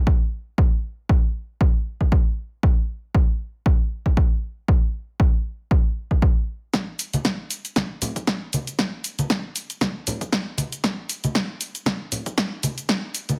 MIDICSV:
0, 0, Header, 1, 2, 480
1, 0, Start_track
1, 0, Tempo, 512821
1, 545, Time_signature, 4, 2, 24, 8
1, 12534, End_track
2, 0, Start_track
2, 0, Title_t, "Drums"
2, 64, Note_on_c, 9, 36, 109
2, 158, Note_off_c, 9, 36, 0
2, 544, Note_on_c, 9, 36, 109
2, 637, Note_off_c, 9, 36, 0
2, 1024, Note_on_c, 9, 36, 108
2, 1117, Note_off_c, 9, 36, 0
2, 1504, Note_on_c, 9, 36, 106
2, 1597, Note_off_c, 9, 36, 0
2, 1878, Note_on_c, 9, 36, 54
2, 1972, Note_off_c, 9, 36, 0
2, 1984, Note_on_c, 9, 36, 105
2, 2078, Note_off_c, 9, 36, 0
2, 2464, Note_on_c, 9, 36, 101
2, 2558, Note_off_c, 9, 36, 0
2, 2944, Note_on_c, 9, 36, 100
2, 3038, Note_off_c, 9, 36, 0
2, 3424, Note_on_c, 9, 36, 100
2, 3518, Note_off_c, 9, 36, 0
2, 3798, Note_on_c, 9, 36, 56
2, 3892, Note_off_c, 9, 36, 0
2, 3904, Note_on_c, 9, 36, 104
2, 3997, Note_off_c, 9, 36, 0
2, 4384, Note_on_c, 9, 36, 110
2, 4478, Note_off_c, 9, 36, 0
2, 4864, Note_on_c, 9, 36, 107
2, 4958, Note_off_c, 9, 36, 0
2, 5344, Note_on_c, 9, 36, 103
2, 5438, Note_off_c, 9, 36, 0
2, 5718, Note_on_c, 9, 36, 54
2, 5812, Note_off_c, 9, 36, 0
2, 5824, Note_on_c, 9, 36, 104
2, 5918, Note_off_c, 9, 36, 0
2, 6304, Note_on_c, 9, 36, 113
2, 6305, Note_on_c, 9, 38, 47
2, 6305, Note_on_c, 9, 42, 52
2, 6307, Note_on_c, 9, 82, 32
2, 6398, Note_off_c, 9, 36, 0
2, 6398, Note_off_c, 9, 38, 0
2, 6398, Note_off_c, 9, 42, 0
2, 6400, Note_off_c, 9, 82, 0
2, 6544, Note_on_c, 9, 46, 102
2, 6546, Note_on_c, 9, 82, 73
2, 6638, Note_off_c, 9, 46, 0
2, 6640, Note_off_c, 9, 82, 0
2, 6678, Note_on_c, 9, 42, 63
2, 6680, Note_on_c, 9, 82, 40
2, 6682, Note_on_c, 9, 63, 93
2, 6772, Note_off_c, 9, 42, 0
2, 6774, Note_off_c, 9, 82, 0
2, 6776, Note_off_c, 9, 63, 0
2, 6784, Note_on_c, 9, 36, 110
2, 6784, Note_on_c, 9, 38, 49
2, 6784, Note_on_c, 9, 42, 57
2, 6786, Note_on_c, 9, 82, 32
2, 6878, Note_off_c, 9, 36, 0
2, 6878, Note_off_c, 9, 38, 0
2, 6878, Note_off_c, 9, 42, 0
2, 6880, Note_off_c, 9, 82, 0
2, 7025, Note_on_c, 9, 46, 103
2, 7027, Note_on_c, 9, 82, 78
2, 7118, Note_off_c, 9, 46, 0
2, 7120, Note_off_c, 9, 82, 0
2, 7159, Note_on_c, 9, 42, 64
2, 7161, Note_on_c, 9, 82, 41
2, 7252, Note_off_c, 9, 42, 0
2, 7254, Note_off_c, 9, 82, 0
2, 7264, Note_on_c, 9, 36, 109
2, 7264, Note_on_c, 9, 38, 49
2, 7264, Note_on_c, 9, 42, 51
2, 7266, Note_on_c, 9, 82, 32
2, 7271, Note_on_c, 9, 63, 61
2, 7358, Note_off_c, 9, 36, 0
2, 7358, Note_off_c, 9, 38, 0
2, 7358, Note_off_c, 9, 42, 0
2, 7360, Note_off_c, 9, 82, 0
2, 7365, Note_off_c, 9, 63, 0
2, 7504, Note_on_c, 9, 46, 100
2, 7506, Note_on_c, 9, 82, 76
2, 7507, Note_on_c, 9, 64, 87
2, 7598, Note_off_c, 9, 46, 0
2, 7600, Note_off_c, 9, 64, 0
2, 7600, Note_off_c, 9, 82, 0
2, 7638, Note_on_c, 9, 36, 60
2, 7639, Note_on_c, 9, 42, 66
2, 7641, Note_on_c, 9, 82, 44
2, 7732, Note_off_c, 9, 36, 0
2, 7733, Note_off_c, 9, 42, 0
2, 7735, Note_off_c, 9, 82, 0
2, 7744, Note_on_c, 9, 36, 113
2, 7745, Note_on_c, 9, 38, 52
2, 7745, Note_on_c, 9, 42, 54
2, 7747, Note_on_c, 9, 82, 33
2, 7838, Note_off_c, 9, 36, 0
2, 7838, Note_off_c, 9, 38, 0
2, 7838, Note_off_c, 9, 42, 0
2, 7840, Note_off_c, 9, 82, 0
2, 7984, Note_on_c, 9, 46, 100
2, 7987, Note_on_c, 9, 82, 77
2, 7992, Note_on_c, 9, 63, 89
2, 8078, Note_off_c, 9, 46, 0
2, 8080, Note_off_c, 9, 82, 0
2, 8086, Note_off_c, 9, 63, 0
2, 8119, Note_on_c, 9, 42, 65
2, 8121, Note_on_c, 9, 82, 42
2, 8212, Note_off_c, 9, 42, 0
2, 8214, Note_off_c, 9, 82, 0
2, 8224, Note_on_c, 9, 36, 118
2, 8225, Note_on_c, 9, 38, 50
2, 8225, Note_on_c, 9, 42, 51
2, 8227, Note_on_c, 9, 82, 31
2, 8318, Note_off_c, 9, 36, 0
2, 8318, Note_off_c, 9, 38, 0
2, 8318, Note_off_c, 9, 42, 0
2, 8320, Note_off_c, 9, 82, 0
2, 8464, Note_on_c, 9, 46, 100
2, 8466, Note_on_c, 9, 82, 71
2, 8557, Note_off_c, 9, 46, 0
2, 8559, Note_off_c, 9, 82, 0
2, 8599, Note_on_c, 9, 42, 62
2, 8600, Note_on_c, 9, 63, 96
2, 8601, Note_on_c, 9, 82, 42
2, 8692, Note_off_c, 9, 42, 0
2, 8694, Note_off_c, 9, 63, 0
2, 8694, Note_off_c, 9, 82, 0
2, 8704, Note_on_c, 9, 36, 112
2, 8705, Note_on_c, 9, 38, 55
2, 8705, Note_on_c, 9, 42, 53
2, 8707, Note_on_c, 9, 82, 32
2, 8798, Note_off_c, 9, 36, 0
2, 8798, Note_off_c, 9, 38, 0
2, 8798, Note_off_c, 9, 42, 0
2, 8800, Note_off_c, 9, 82, 0
2, 8945, Note_on_c, 9, 46, 109
2, 8947, Note_on_c, 9, 82, 75
2, 9038, Note_off_c, 9, 46, 0
2, 9040, Note_off_c, 9, 82, 0
2, 9078, Note_on_c, 9, 42, 62
2, 9080, Note_on_c, 9, 82, 40
2, 9172, Note_off_c, 9, 42, 0
2, 9174, Note_off_c, 9, 82, 0
2, 9182, Note_on_c, 9, 63, 70
2, 9184, Note_on_c, 9, 36, 118
2, 9185, Note_on_c, 9, 38, 54
2, 9185, Note_on_c, 9, 42, 50
2, 9187, Note_on_c, 9, 82, 31
2, 9276, Note_off_c, 9, 63, 0
2, 9278, Note_off_c, 9, 36, 0
2, 9278, Note_off_c, 9, 38, 0
2, 9278, Note_off_c, 9, 42, 0
2, 9280, Note_off_c, 9, 82, 0
2, 9425, Note_on_c, 9, 46, 107
2, 9427, Note_on_c, 9, 82, 72
2, 9430, Note_on_c, 9, 64, 89
2, 9518, Note_off_c, 9, 46, 0
2, 9520, Note_off_c, 9, 82, 0
2, 9523, Note_off_c, 9, 64, 0
2, 9558, Note_on_c, 9, 36, 61
2, 9559, Note_on_c, 9, 42, 64
2, 9561, Note_on_c, 9, 82, 42
2, 9652, Note_off_c, 9, 36, 0
2, 9652, Note_off_c, 9, 42, 0
2, 9654, Note_off_c, 9, 82, 0
2, 9664, Note_on_c, 9, 36, 119
2, 9664, Note_on_c, 9, 38, 55
2, 9664, Note_on_c, 9, 42, 52
2, 9667, Note_on_c, 9, 82, 31
2, 9758, Note_off_c, 9, 36, 0
2, 9758, Note_off_c, 9, 38, 0
2, 9758, Note_off_c, 9, 42, 0
2, 9760, Note_off_c, 9, 82, 0
2, 9900, Note_on_c, 9, 63, 85
2, 9905, Note_on_c, 9, 46, 109
2, 9907, Note_on_c, 9, 82, 73
2, 9994, Note_off_c, 9, 63, 0
2, 9998, Note_off_c, 9, 46, 0
2, 10000, Note_off_c, 9, 82, 0
2, 10038, Note_on_c, 9, 42, 63
2, 10040, Note_on_c, 9, 82, 43
2, 10132, Note_off_c, 9, 42, 0
2, 10134, Note_off_c, 9, 82, 0
2, 10144, Note_on_c, 9, 36, 123
2, 10145, Note_on_c, 9, 38, 57
2, 10145, Note_on_c, 9, 42, 49
2, 10147, Note_on_c, 9, 82, 31
2, 10237, Note_off_c, 9, 36, 0
2, 10238, Note_off_c, 9, 38, 0
2, 10238, Note_off_c, 9, 42, 0
2, 10240, Note_off_c, 9, 82, 0
2, 10384, Note_on_c, 9, 46, 106
2, 10386, Note_on_c, 9, 82, 73
2, 10478, Note_off_c, 9, 46, 0
2, 10480, Note_off_c, 9, 82, 0
2, 10518, Note_on_c, 9, 42, 58
2, 10520, Note_on_c, 9, 82, 38
2, 10523, Note_on_c, 9, 63, 95
2, 10612, Note_off_c, 9, 42, 0
2, 10614, Note_off_c, 9, 82, 0
2, 10616, Note_off_c, 9, 63, 0
2, 10623, Note_on_c, 9, 36, 120
2, 10624, Note_on_c, 9, 38, 61
2, 10624, Note_on_c, 9, 42, 53
2, 10626, Note_on_c, 9, 82, 33
2, 10717, Note_off_c, 9, 36, 0
2, 10718, Note_off_c, 9, 38, 0
2, 10718, Note_off_c, 9, 42, 0
2, 10720, Note_off_c, 9, 82, 0
2, 10864, Note_on_c, 9, 46, 112
2, 10866, Note_on_c, 9, 82, 75
2, 10957, Note_off_c, 9, 46, 0
2, 10959, Note_off_c, 9, 82, 0
2, 10997, Note_on_c, 9, 42, 59
2, 10999, Note_on_c, 9, 82, 41
2, 11091, Note_off_c, 9, 42, 0
2, 11093, Note_off_c, 9, 82, 0
2, 11098, Note_on_c, 9, 63, 70
2, 11103, Note_on_c, 9, 36, 120
2, 11104, Note_on_c, 9, 38, 60
2, 11104, Note_on_c, 9, 42, 49
2, 11106, Note_on_c, 9, 82, 31
2, 11192, Note_off_c, 9, 63, 0
2, 11197, Note_off_c, 9, 36, 0
2, 11197, Note_off_c, 9, 38, 0
2, 11197, Note_off_c, 9, 42, 0
2, 11199, Note_off_c, 9, 82, 0
2, 11343, Note_on_c, 9, 46, 110
2, 11345, Note_on_c, 9, 64, 79
2, 11346, Note_on_c, 9, 82, 70
2, 11437, Note_off_c, 9, 46, 0
2, 11438, Note_off_c, 9, 64, 0
2, 11439, Note_off_c, 9, 82, 0
2, 11477, Note_on_c, 9, 36, 64
2, 11478, Note_on_c, 9, 42, 63
2, 11480, Note_on_c, 9, 82, 41
2, 11571, Note_off_c, 9, 36, 0
2, 11571, Note_off_c, 9, 42, 0
2, 11573, Note_off_c, 9, 82, 0
2, 11583, Note_on_c, 9, 36, 123
2, 11584, Note_on_c, 9, 38, 64
2, 11584, Note_on_c, 9, 42, 49
2, 11586, Note_on_c, 9, 82, 31
2, 11677, Note_off_c, 9, 36, 0
2, 11678, Note_off_c, 9, 38, 0
2, 11678, Note_off_c, 9, 42, 0
2, 11680, Note_off_c, 9, 82, 0
2, 11824, Note_on_c, 9, 46, 110
2, 11826, Note_on_c, 9, 63, 96
2, 11826, Note_on_c, 9, 82, 74
2, 11918, Note_off_c, 9, 46, 0
2, 11920, Note_off_c, 9, 63, 0
2, 11920, Note_off_c, 9, 82, 0
2, 11959, Note_on_c, 9, 42, 63
2, 11961, Note_on_c, 9, 82, 42
2, 12052, Note_off_c, 9, 42, 0
2, 12054, Note_off_c, 9, 82, 0
2, 12063, Note_on_c, 9, 36, 119
2, 12064, Note_on_c, 9, 38, 62
2, 12064, Note_on_c, 9, 42, 50
2, 12067, Note_on_c, 9, 82, 32
2, 12157, Note_off_c, 9, 36, 0
2, 12158, Note_off_c, 9, 38, 0
2, 12158, Note_off_c, 9, 42, 0
2, 12160, Note_off_c, 9, 82, 0
2, 12304, Note_on_c, 9, 46, 103
2, 12306, Note_on_c, 9, 82, 73
2, 12398, Note_off_c, 9, 46, 0
2, 12400, Note_off_c, 9, 82, 0
2, 12438, Note_on_c, 9, 42, 60
2, 12440, Note_on_c, 9, 82, 41
2, 12442, Note_on_c, 9, 63, 101
2, 12532, Note_off_c, 9, 42, 0
2, 12534, Note_off_c, 9, 63, 0
2, 12534, Note_off_c, 9, 82, 0
2, 12534, End_track
0, 0, End_of_file